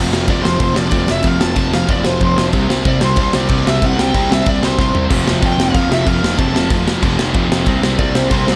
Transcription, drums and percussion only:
0.13 snare
0.28 kick, crash
0.45 snare
0.60 kick, crash
0.76 snare
0.91 kick, crash
1.08 snare
1.23 kick, crash
1.41 snare
1.56 kick, crash
1.74 snare
1.89 kick, crash
2.05 snare
2.21 kick, crash
2.38 snare
2.53 kick, crash
2.70 snare
2.85 kick, crash
3.01 snare
3.16 kick, crash
3.33 snare
3.49 kick, crash
3.67 snare
3.82 kick, crash
3.99 snare
4.14 kick, crash
4.32 snare
4.46 kick, crash
4.63 snare
4.79 kick, snare
4.95 floor tom
5.11 kick, splash, crash
5.28 snare
5.42 kick, crash
5.60 snare
5.74 kick, crash
5.92 snare
6.07 kick, crash
6.24 snare
6.39 kick, crash
6.56 snare
6.70 kick, crash
6.88 snare
7.03 kick, crash
7.19 snare
7.34 kick, crash
7.52 snare
7.66 kick, crash
7.83 snare
7.99 kick, crash
8.15 snare
8.31 kick, crash
8.48 snare

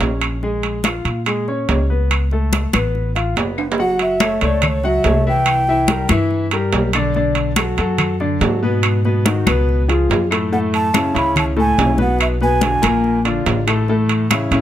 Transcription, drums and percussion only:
0.01 high conga, high timbale, low timbale
0.21 high timbale, claves
0.43 high conga
0.63 high conga, high timbale
0.84 high conga, high timbale, low timbale, claves
1.05 high conga, high timbale
1.26 high conga, high timbale, claves
1.48 high conga
1.69 high conga, high timbale, low timbale
2.11 high conga, high timbale, claves
2.31 high conga
2.53 high conga, high timbale, low timbale
2.73 high conga, high timbale, claves
2.95 high conga
3.16 high conga, high timbale
3.36 high conga, high timbale, low timbale
3.58 high timbale, claves
3.72 low timbale
3.78 high conga
3.99 high conga, high timbale
4.20 high conga, high timbale, low timbale, claves
4.41 high conga, high timbale
4.62 high conga, low conga, high timbale, claves
4.83 high conga
5.04 high conga, high timbale, low timbale
5.46 high conga, high timbale, claves
5.67 high conga
5.88 high conga, high timbale, low timbale
6.09 high conga, high timbale, claves
6.31 high conga
6.51 high conga, high timbale
6.73 high conga, high timbale, low timbale
6.93 high timbale, claves
7.14 high conga
7.35 high conga, high timbale
7.56 high conga, high timbale, low timbale, claves
7.77 high conga, high timbale
7.98 high conga, low conga, high timbale, claves
8.20 high conga
8.41 high conga, high timbale, low timbale
8.83 high conga, high timbale, claves
9.05 high conga
9.26 high conga, high timbale, low timbale
9.47 high conga, high timbale, claves
9.69 high conga
9.89 high conga, high timbale
10.11 high conga, high timbale, low timbale
10.31 high timbale, claves
10.53 high conga
10.74 high conga, high timbale
10.94 high conga, high timbale, low timbale, claves
11.16 high conga, high timbale
11.36 high conga, low conga, high timbale, claves
11.56 high conga
11.78 high conga, high timbale, low timbale
11.98 high conga
12.19 high conga, high timbale, claves
12.41 high conga
12.61 high conga, high timbale, low timbale
12.83 high conga, high timbale, claves
13.04 high conga
13.25 high conga, high timbale
13.46 high conga, high timbale, low timbale
13.68 high timbale, claves
13.88 high conga
14.09 high conga, high timbale
14.31 high conga, high timbale, low timbale, claves
14.52 high conga, high timbale

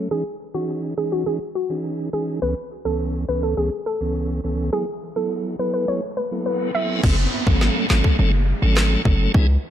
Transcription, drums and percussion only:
7.04 kick, crash
7.47 kick
7.61 snare
7.90 snare, clap
8.04 kick
8.77 cross-stick, snare, clap
9.05 kick
9.34 kick

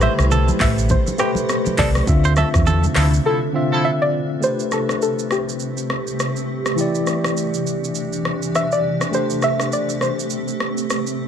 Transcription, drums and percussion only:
0.01 cross-stick, high conga, shaker
0.19 cross-stick, shaker
0.31 low conga, shaker
0.48 high conga, shaker
0.60 kick, cross-stick, clap, open hi-hat
0.78 shaker
0.89 kick, low conga, shaker
1.07 high conga, shaker
1.19 cross-stick, shaker
1.35 high conga, shaker
1.49 cross-stick, shaker
1.66 high conga, shaker
1.78 kick, clap, open hi-hat, low conga
1.95 cross-stick, high conga, shaker
2.08 kick, shaker
2.24 shaker
2.36 cross-stick, high conga, shaker
2.54 kick, cross-stick, shaker
2.67 low conga, shaker
2.84 high conga, shaker
2.95 cross-stick, clap, open hi-hat, shaker
3.14 shaker
4.43 shaker
4.60 shaker
4.72 cross-stick, shaker
4.89 cross-stick, shaker
5.02 shaker
5.19 shaker
5.31 cross-stick, shaker
5.49 shaker
5.60 shaker
5.77 shaker
5.90 cross-stick
6.07 shaker
6.20 cross-stick, shaker
6.36 shaker
6.66 cross-stick, shaker
6.78 shaker
6.95 shaker
7.07 cross-stick, shaker
7.24 cross-stick, shaker
7.37 shaker
7.54 shaker
7.67 shaker
7.84 shaker
7.95 shaker
8.13 shaker
8.25 cross-stick
8.43 shaker
8.55 cross-stick, shaker
8.72 shaker
9.01 cross-stick, shaker
9.13 shaker
9.30 shaker
9.42 cross-stick, shaker
9.60 cross-stick, shaker
9.72 shaker
9.89 shaker
10.01 cross-stick, shaker
10.20 shaker
10.30 shaker
10.48 shaker
10.60 cross-stick
10.78 shaker
10.90 cross-stick, shaker
11.07 shaker

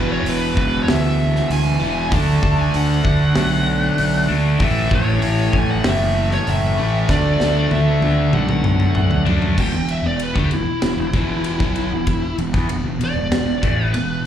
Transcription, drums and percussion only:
0.26 open hi-hat
0.57 kick
0.88 snare, open hi-hat
1.36 snare
1.50 open hi-hat
2.12 kick, open hi-hat
2.43 kick
2.74 open hi-hat
3.05 kick
3.35 snare, open hi-hat
3.98 open hi-hat
4.60 kick, open hi-hat
4.91 kick
5.22 open hi-hat
5.53 kick
5.84 snare, open hi-hat
6.31 snare
6.47 open hi-hat
7.09 kick, snare
7.40 snare
7.71 high tom
8.02 high tom
8.33 mid tom
8.49 mid tom
8.64 mid tom
8.80 mid tom
8.95 mid tom
9.11 floor tom
9.27 floor tom
9.42 floor tom
9.58 kick, crash
9.89 ride
10.20 ride
10.36 kick
10.51 ride
10.82 snare, ride
11.13 kick, ride
11.44 ride
11.60 kick
11.76 ride
12.07 kick, ride
12.38 ride
12.54 kick
12.69 ride
13.01 ride
13.32 snare, ride
13.63 kick, ride
13.94 ride

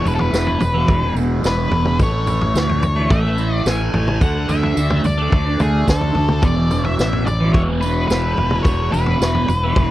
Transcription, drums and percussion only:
0.05 floor tom, tambourine
0.19 floor tom
0.34 snare, tambourine
0.47 floor tom
0.60 floor tom, tambourine
0.88 kick, floor tom, tambourine
1.16 tambourine
1.44 snare, tambourine
1.71 floor tom
1.85 mid tom
1.99 kick, floor tom, tambourine
2.27 floor tom, tambourine
2.41 floor tom
2.55 snare, tambourine
2.69 floor tom
2.83 floor tom, tambourine
3.10 kick, floor tom, tambourine
3.38 tambourine
3.66 snare, tambourine
3.94 floor tom
4.08 mid tom
4.21 kick, floor tom, tambourine
4.49 floor tom, tambourine
4.63 floor tom
4.77 tambourine
4.90 floor tom, mid tom
5.04 floor tom, tambourine
5.32 kick, floor tom
5.60 floor tom, mid tom, tambourine
5.88 kick, snare, tambourine
6.01 floor tom
6.15 floor tom
6.28 mid tom
6.42 kick, floor tom, tambourine
6.70 floor tom, tambourine
6.84 floor tom
6.99 snare, tambourine
7.13 floor tom
7.27 floor tom, tambourine
7.54 kick, floor tom, tambourine
7.82 tambourine
8.10 snare, tambourine
8.37 floor tom
8.51 mid tom
8.64 kick, floor tom, tambourine
8.92 floor tom, tambourine
9.06 floor tom
9.22 snare, tambourine
9.34 floor tom
9.48 floor tom, tambourine
9.76 kick, floor tom, tambourine

